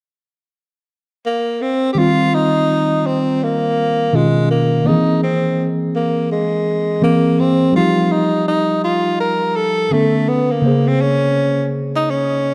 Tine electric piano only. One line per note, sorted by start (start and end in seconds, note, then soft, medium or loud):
1.95 4.09 D#3 medium
1.95 4.10 G3 medium
1.95 4.11 C4 medium
2.00 4.12 F4 medium
4.13 4.86 B2 medium
4.13 4.82 D#3 medium
4.13 4.87 C#4 medium
4.13 4.87 F4 medium
4.83 4.93 D#3 soft
4.83 6.99 A#3 medium
4.83 7.00 C4 medium
4.89 7.00 E3 medium
4.89 7.01 G#4 medium
7.02 7.75 E3 medium
7.02 7.75 A#3 medium
7.02 7.76 C4 medium
7.02 7.76 G#4 medium
7.72 9.87 F3 medium
7.72 9.88 G3 medium
7.72 9.89 D#4 medium
7.78 9.90 G4 medium
9.91 10.64 D3 medium
9.91 10.64 B3 medium
9.91 10.65 C#4 medium
9.91 10.65 A4 medium
10.62 12.54 C#3 medium
10.62 12.54 A#3 medium
10.66 12.54 G#4 medium
10.66 12.54 C5 medium